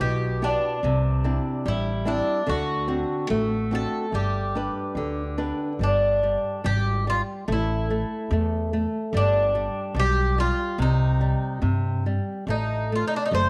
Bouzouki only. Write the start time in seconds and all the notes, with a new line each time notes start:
0.01 G4
0.44 D4
1.68 E4
2.08 D4
2.49 F#4
3.75 A4
4.15 G4
5.83 D4
6.66 G4
7.10 F4
7.52 E4
9.17 D4
10.00 G4
10.40 F4
10.82 D#4
12.50 D#4
12.96 F4
13.08 D#4
13.16 D4
13.26 D#4
13.35 C5